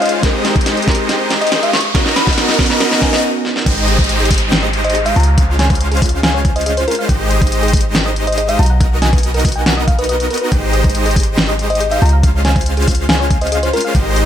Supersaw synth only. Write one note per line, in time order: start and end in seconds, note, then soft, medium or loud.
0.00 0.21 G#3 medium
0.00 0.21 C#4 medium
0.00 0.21 F4 medium
0.00 0.21 C5 medium
0.00 0.21 F5 medium
0.23 0.85 G#3 loud
0.23 0.85 D#4 medium
0.23 0.85 G4 medium
0.23 0.85 C5 medium
0.23 0.85 D#5 loud
0.87 1.72 G#3 medium
0.87 1.72 D#4 medium
0.87 1.72 G4 medium
0.87 1.72 C5 medium
0.87 1.72 D#5 medium
1.95 2.57 B3 medium
1.95 2.57 D#4 medium
1.95 2.57 F#4 medium
1.95 2.57 A#4 medium
1.95 2.57 D#5 loud
2.59 3.23 B3 medium
2.59 3.23 D#4 medium
2.59 3.23 F#4 medium
2.59 3.23 A#4 medium
2.59 3.23 D#5 medium
3.66 4.28 G#3 loud
3.66 4.28 D#4 medium
3.66 4.28 G4 medium
3.66 4.28 C5 medium
3.66 4.28 D#5 loud
4.30 5.15 G#3 medium
4.30 5.15 D#4 medium
4.30 5.15 D#5 medium
5.38 5.99 G#3 medium
5.38 5.99 C#4 medium
5.38 6.00 F4 medium
5.38 5.99 C5 medium
5.38 6.00 F5 loud
6.02 7.07 G#3 medium
6.02 7.07 F4 medium
7.09 7.71 G#3 loud
7.09 7.71 D#4 medium
7.09 7.71 G4 medium
7.09 7.71 D#5 loud
8.81 9.42 B3 medium
8.81 9.42 D#4 medium
8.81 9.42 F#4 medium
8.81 9.42 A#4 medium
8.81 9.42 D#5 loud
9.45 10.49 B3 medium
9.45 10.49 D#4 medium
9.45 10.49 F#4 medium
9.45 10.49 A#4 medium
9.45 10.49 D#5 medium
10.52 11.14 G#3 loud
10.52 11.14 D#4 medium
10.52 11.14 G4 medium
10.52 11.14 C5 medium
10.52 11.14 D#5 loud
11.16 12.01 G#3 medium
11.16 12.01 D#4 medium
11.16 12.01 G4 medium
11.16 12.01 C5 medium
11.16 12.01 D#5 medium
12.23 12.85 G#3 medium
12.23 12.85 C#4 medium
12.23 12.85 F4 medium
12.23 12.85 C5 medium
12.23 12.85 F5 loud
12.88 13.92 G#3 medium
12.88 13.92 C#4 medium
12.88 13.92 F4 medium
12.88 13.92 C5 medium
12.88 13.92 F5 medium
13.95 14.25 G#3 loud
13.95 14.25 D#4 medium
13.95 14.25 C5 medium